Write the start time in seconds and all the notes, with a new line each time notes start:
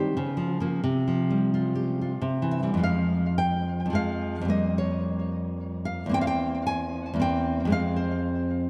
Already playing: D#3 C4 G4 C5
0.17 C#3
0.37 F3
0.60 F3 A#3
0.84 C3
1.08 F3
1.30 G3
1.54 F4
1.75 G4
2.01 F4
2.22 C3
2.42 E3
2.51 E5
2.63 E3 G3
2.74 F2 F3
2.79 G#3
2.83 F5
3.38 G5
3.86 F2
3.90 F3 G#3
3.95 F5
4.41 F2 G3
4.48 A#3 D#5
4.78 C#5
5.85 F5
6.06 E2 A#3
6.11 C4 G5
6.21 F5
6.27 G5
6.67 G#5
7.14 E2 A#3
7.20 C4 G5
7.65 F2 G#3
7.70 C4 F5
7.96 C5